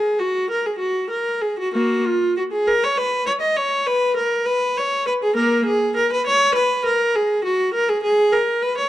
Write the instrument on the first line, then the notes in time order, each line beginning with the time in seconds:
viola
Already playing: G#4
0.19 F#4
0.50 A#4
0.66 G#4
0.78 F#4
1.10 A#4
1.41 G#4
1.59 F#4
1.73 A#3 F#4
2.04 F4
2.37 F#4
2.52 G#4
2.67 A#4
2.83 C#5
2.97 B4
3.26 C#5
3.41 D#5
3.56 C#5
3.86 B4
4.16 A#4
4.46 B4
4.77 C#5
5.07 B4
5.23 G#4
5.36 A#3 A#4
5.65 G#4
5.96 A#4
6.12 B4
6.26 C#5
6.55 B4
6.85 A#4
7.15 G#4
7.44 F#4
7.74 A#4
7.89 G#4
8.03 G#4
8.32 A#4
8.62 B4
8.78 C#5